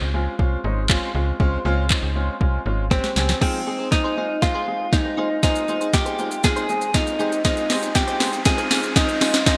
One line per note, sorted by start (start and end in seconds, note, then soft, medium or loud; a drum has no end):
0.01 0.28 C#2 medium
0.14 0.31 G#3 medium
0.14 0.31 C4 medium
0.14 0.31 C#4 medium
0.14 0.31 F4 loud
0.39 0.57 C2 medium
0.39 0.56 G#3 medium
0.39 0.56 C4 medium
0.39 0.56 C#4 medium
0.39 0.56 F4 loud
0.39 kick loud
0.64 1.00 G#1 medium
0.64 0.81 G#3 medium
0.64 0.81 C4 medium
0.64 0.81 C#4 medium
0.64 0.81 D#4 medium
0.89 1.06 G#3 loud
0.89 1.06 C4 loud
0.89 1.07 C#4 loud
0.89 1.07 F4 loud
0.89 kick loud
0.89 clap loud
1.15 1.33 C#2 medium
1.15 1.32 G#3 medium
1.15 1.32 C4 medium
1.15 1.32 C#4 medium
1.15 1.32 F4 loud
1.40 1.58 C#2 loud
1.40 1.57 G#3 loud
1.40 1.57 C4 loud
1.40 1.57 C#4 loud
1.40 1.57 F4 loud
1.40 kick loud
1.65 1.92 C#2 medium
1.65 1.82 G#3 loud
1.65 1.82 C4 loud
1.65 1.82 C#4 loud
1.65 1.82 F4 loud
1.90 2.07 G#3 medium
1.90 2.07 C4 medium
1.90 2.07 C#4 medium
1.90 2.07 D#4 medium
1.90 kick loud
1.90 clap loud
2.03 2.30 C#2 medium
2.15 2.32 G#3 medium
2.15 2.33 C4 medium
2.15 2.33 C#4 medium
2.15 2.33 F4 medium
2.41 2.59 C2 loud
2.41 2.58 G#3 medium
2.41 2.58 C4 medium
2.41 2.58 C#4 medium
2.41 2.58 F4 loud
2.41 kick loud
2.66 3.02 G#1 medium
2.66 2.83 G#3 medium
2.66 2.83 C4 medium
2.66 2.83 C#4 medium
2.66 2.83 F4 medium
2.91 3.08 G#3 loud
2.91 3.08 C4 loud
2.91 3.41 C4 medium
2.91 3.08 C#4 loud
2.91 3.08 G4 loud
2.91 kick loud
2.91 snare medium
3.04 snare medium
3.16 3.34 C#2 medium
3.16 3.33 G#3 medium
3.16 3.33 C4 medium
3.16 3.33 C#4 medium
3.16 3.33 G4 medium
3.16 snare medium
3.29 snare medium
3.41 3.58 G#3 medium
3.41 3.59 C4 medium
3.41 3.89 C4 medium
3.41 3.60 D#4 medium
3.41 3.59 D#4 medium
3.41 3.59 F4 loud
3.41 3.60 G#4 medium
3.41 3.61 C5 medium
3.41 kick loud
3.41 snare medium
3.41 crash medium
3.41 riser medium
3.66 3.84 G#3 medium
3.66 3.84 C4 medium
3.66 3.79 D#4 medium
3.66 3.84 D#4 medium
3.66 3.84 G#4 medium
3.66 3.79 G#4 medium
3.66 3.78 C5 medium
3.79 3.91 D#4 medium
3.79 3.91 G#4 medium
3.79 3.92 C5 medium
3.92 4.09 G#3 medium
3.92 4.09 C4 medium
3.92 4.44 D#4 medium
3.92 4.09 D#4 medium
3.92 4.09 F4 medium
3.92 muted clean electric guitar stroke soft
3.92 kick loud
3.92 snare medium
4.04 4.16 D#4 medium
4.04 4.16 G#4 medium
4.04 4.17 C5 medium
4.17 4.34 G#3 medium
4.17 4.34 C4 medium
4.17 4.32 D#4 medium
4.17 4.34 D#4 medium
4.17 4.34 F4 medium
4.17 4.29 G#4 medium
4.17 4.28 C5 medium
4.29 muted clean electric guitar stroke soft
4.42 4.59 G#3 loud
4.42 4.59 C4 medium
4.42 4.59 D#4 medium
4.42 4.94 F4 medium
4.42 4.59 F4 loud
4.42 muted clean electric guitar stroke soft
4.42 kick loud
4.42 snare medium
4.54 4.66 D#4 medium
4.54 4.66 G#4 medium
4.54 4.67 C5 medium
4.67 4.85 G#3 medium
4.67 4.85 C4 medium
4.67 4.85 D#4 medium
4.67 4.85 G#4 medium
4.67 muted clean electric guitar stroke soft
4.80 muted clean electric guitar stroke soft
4.92 5.10 G#3 medium
4.92 5.10 C4 medium
4.92 5.42 D#4 medium
4.92 5.10 D#4 medium
4.92 5.10 G4 medium
4.92 muted clean electric guitar stroke soft
4.92 kick loud
4.92 snare medium
5.05 muted clean electric guitar stroke soft
5.17 5.35 G#3 medium
5.17 5.35 C4 medium
5.17 5.36 D#4 medium
5.17 5.35 D#4 medium
5.17 5.35 F4 medium
5.17 5.30 G#4 medium
5.17 5.29 C5 medium
5.30 muted clean electric guitar stroke soft
5.43 5.60 G#3 medium
5.43 5.60 C4 medium
5.43 5.62 D#4 medium
5.43 5.60 D#4 medium
5.43 5.95 D#4 medium
5.43 5.60 F4 loud
5.43 5.62 G#4 medium
5.43 5.62 C5 medium
5.43 kick loud
5.43 snare medium
5.43 closed hi-hat medium
5.43 shaker medium
5.55 closed hi-hat medium
5.55 shaker medium
5.68 5.85 G#3 medium
5.68 5.85 C4 medium
5.68 5.81 D#4 medium
5.68 5.85 D#4 medium
5.68 5.86 F4 medium
5.68 5.80 G#4 medium
5.68 5.79 C5 medium
5.68 shaker medium
5.81 5.92 D#4 medium
5.81 5.93 G#4 medium
5.81 5.93 C5 medium
5.81 closed hi-hat soft
5.81 shaker medium
5.93 6.11 G#3 medium
5.93 6.11 C4 medium
5.93 6.11 D#4 medium
5.93 6.11 F4 medium
5.93 6.44 G4 loud
5.93 muted clean electric guitar stroke soft
5.93 kick loud
5.93 snare medium
5.93 closed hi-hat medium
5.93 shaker medium
6.06 6.17 D#4 medium
6.06 6.18 G#4 medium
6.06 6.19 C5 medium
6.06 closed hi-hat medium
6.06 shaker medium
6.18 6.36 G#3 medium
6.18 6.36 C4 medium
6.18 6.33 D#4 medium
6.18 6.36 D#4 medium
6.18 6.36 F4 medium
6.18 6.31 G#4 medium
6.18 6.30 C5 medium
6.18 shaker medium
6.31 muted clean electric guitar stroke soft
6.31 closed hi-hat soft
6.31 shaker medium
6.44 6.61 G#3 medium
6.44 6.61 C4 medium
6.44 6.61 D#4 medium
6.44 6.61 F4 loud
6.44 6.96 G#4 loud
6.44 muted clean electric guitar stroke soft
6.44 kick loud
6.44 snare medium
6.44 closed hi-hat medium
6.44 shaker medium
6.56 6.68 D#4 medium
6.56 6.68 G#4 medium
6.56 6.69 C5 medium
6.56 closed hi-hat soft
6.56 shaker medium
6.69 6.86 G#3 medium
6.69 6.86 C4 medium
6.69 6.86 D#4 medium
6.69 6.86 G#4 medium
6.69 muted clean electric guitar stroke soft
6.69 shaker medium
6.81 muted clean electric guitar stroke soft
6.81 closed hi-hat soft
6.81 shaker medium
6.94 7.11 G#3 medium
6.94 7.11 C4 medium
6.94 7.12 D#4 medium
6.94 7.42 D#4 loud
6.94 7.12 F4 medium
6.94 muted clean electric guitar stroke soft
6.94 kick loud
6.94 snare medium
6.94 closed hi-hat medium
6.94 shaker medium
7.07 muted clean electric guitar stroke soft
7.07 closed hi-hat medium
7.07 shaker medium
7.19 7.37 G#3 medium
7.19 7.37 C4 medium
7.19 7.38 D#4 medium
7.19 7.37 D#4 medium
7.19 7.37 G4 medium
7.19 7.32 G#4 medium
7.19 7.31 C5 medium
7.19 shaker medium
7.32 muted clean electric guitar stroke soft
7.32 closed hi-hat medium
7.32 shaker medium
7.44 7.62 G#3 medium
7.44 7.62 C4 medium
7.44 7.63 D#4 medium
7.44 7.62 D#4 medium
7.44 7.97 D#4 loud
7.44 7.62 F4 loud
7.44 7.64 G#4 medium
7.44 7.64 C5 medium
7.44 kick loud
7.44 snare medium
7.44 closed hi-hat medium
7.44 shaker medium
7.57 closed hi-hat medium
7.57 shaker medium
7.70 7.87 G#3 medium
7.70 7.87 C4 medium
7.70 7.82 D#4 medium
7.70 7.87 D#4 medium
7.70 7.87 G4 medium
7.70 7.82 G#4 medium
7.70 7.81 C5 medium
7.70 snare medium
7.70 open hi-hat medium
7.70 shaker medium
7.70 shaker soft
7.82 7.94 D#4 medium
7.82 7.95 G#4 medium
7.82 7.95 C5 medium
7.82 closed hi-hat medium
7.82 shaker medium
7.95 8.12 G#3 medium
7.95 8.12 C4 medium
7.95 8.12 D#4 medium
7.95 8.12 F4 medium
7.95 8.42 G4 loud
7.95 kick loud
7.95 snare medium
7.95 closed hi-hat medium
7.95 shaker medium
8.08 8.19 D#4 medium
8.08 8.20 G#4 medium
8.08 8.20 C5 medium
8.08 closed hi-hat medium
8.08 shaker medium
8.20 8.37 G#3 medium
8.20 8.38 C4 medium
8.20 8.35 D#4 medium
8.20 8.38 D#4 medium
8.20 8.38 G#4 medium
8.20 8.33 G#4 medium
8.20 8.32 C5 medium
8.20 snare medium
8.20 open hi-hat medium
8.20 shaker soft
8.20 shaker medium
8.33 muted clean electric guitar stroke medium
8.33 closed hi-hat soft
8.33 shaker medium
8.45 8.63 G#3 loud
8.45 8.63 C4 medium
8.45 8.63 D#4 medium
8.45 8.63 F4 loud
8.45 8.98 G#4 loud
8.45 muted clean electric guitar stroke soft
8.45 kick loud
8.45 snare loud
8.45 closed hi-hat medium
8.45 shaker medium
8.58 8.70 D#4 medium
8.58 8.70 G#4 medium
8.58 8.71 C5 medium
8.58 closed hi-hat medium
8.58 shaker medium
8.58 shaker soft
8.71 8.88 G#3 medium
8.71 8.88 C4 medium
8.71 8.88 D#4 medium
8.71 8.88 F4 medium
8.71 muted clean electric guitar stroke soft
8.71 snare loud
8.71 open hi-hat medium
8.71 shaker medium
8.83 muted clean electric guitar stroke soft
8.83 closed hi-hat soft
8.83 shaker medium
8.83 shaker soft
8.96 9.13 G#3 medium
8.96 9.13 C4 medium
8.96 9.45 D#4 medium
8.96 9.13 D#4 medium
8.96 9.13 F4 medium
8.96 muted clean electric guitar stroke soft
8.96 kick loud
8.96 snare medium
8.96 closed hi-hat medium
8.96 shaker medium
9.08 muted clean electric guitar stroke soft
9.08 closed hi-hat medium
9.08 shaker soft
9.21 9.38 G#3 medium
9.21 9.38 C4 medium
9.21 9.40 D#4 medium
9.21 9.38 D#4 medium
9.21 9.38 F4 medium
9.21 9.34 G#4 medium
9.21 9.33 C5 loud
9.21 snare loud
9.21 open hi-hat medium
9.21 shaker soft
9.21 shaker medium
9.34 muted clean electric guitar stroke soft
9.34 snare loud
9.34 closed hi-hat medium
9.34 shaker medium
9.46 9.57 G#3 medium
9.46 9.57 C4 medium
9.46 9.57 D#4 medium
9.46 9.57 D#4 loud
9.46 9.57 D#4 medium
9.46 9.57 F4 loud
9.46 9.57 G#4 medium
9.46 9.57 C5 loud
9.46 kick loud
9.46 snare loud
9.46 closed hi-hat medium
9.46 shaker medium